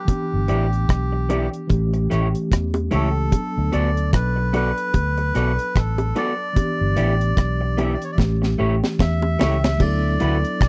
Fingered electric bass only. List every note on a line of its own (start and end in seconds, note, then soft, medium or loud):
0.34 0.48 G1 medium
0.50 0.86 A1 medium
0.90 1.47 B1 medium
1.71 2.07 A1 medium
2.12 2.33 A1 medium
2.52 2.88 E2 medium
2.93 3.29 C#2 medium
3.58 3.72 D2 medium
3.74 4.15 D2 medium
4.14 4.71 B1 loud
4.95 5.31 D2 medium
5.36 5.56 B1 loud
5.76 6.12 A1 medium
6.81 6.96 G1 medium
6.98 7.34 A1 medium
7.38 7.95 B1 loud
8.19 8.55 A1 loud
8.60 8.80 A1 medium
9.00 9.36 E2 medium
9.41 9.77 C#2 medium
9.81 10.17 D2 loud
10.22 10.42 D2 medium
10.62 10.69 B1 loud